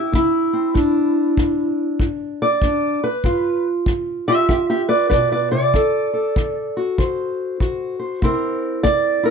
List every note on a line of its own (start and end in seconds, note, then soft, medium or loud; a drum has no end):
0.00 0.13 E4 medium
0.12 0.70 C3 medium
0.12 2.01 E4 loud
0.12 kick medium
0.53 0.73 C4 soft
0.74 1.32 G2 medium
0.74 2.63 D4 soft
0.74 kick medium
1.37 1.96 G2 medium
1.37 kick medium
2.00 2.58 G2 medium
2.00 kick medium
2.42 3.04 D5 loud
2.62 3.20 G2 medium
2.62 3.03 D4 soft
2.62 kick medium
3.04 3.66 B4 medium
3.24 3.82 G2 medium
3.24 4.25 F4 medium
3.24 kick medium
3.86 4.45 G2 medium
3.86 kick medium
4.28 5.73 F4 soft
4.28 4.37 G4 medium
4.28 4.48 E5 loud
4.49 5.07 G2 medium
4.49 4.55 G4 medium
4.49 4.69 E5 medium
4.49 kick medium
4.70 4.81 G4 medium
4.70 4.90 E5 medium
4.89 5.08 B4 medium
4.89 5.09 D5 medium
5.10 5.51 B2 medium
5.10 5.31 B4 medium
5.10 5.31 D5 medium
5.10 kick medium
5.32 5.53 B4 medium
5.32 5.50 D5 medium
5.52 5.75 C3 medium
5.52 6.77 D5 medium
5.74 6.31 D3 medium
5.74 6.12 A4 medium
5.74 kick medium
6.13 8.20 A4 soft
6.36 6.94 D3 medium
6.36 kick medium
6.77 7.60 F#4 soft
6.98 7.56 D3 medium
6.98 7.98 C5 soft
6.98 kick medium
7.60 8.18 D3 medium
7.60 8.20 F#4 soft
7.60 kick medium
7.99 8.20 C5 soft
8.22 8.80 C3 medium
8.22 9.30 C4 medium
8.22 9.22 E4 medium
8.22 9.24 A#4 medium
8.22 8.83 C5 medium
8.22 kick medium
8.83 9.30 C3 medium
8.83 9.26 D5 loud
8.83 kick medium
9.23 9.30 E4 medium
9.23 9.30 A#4 loud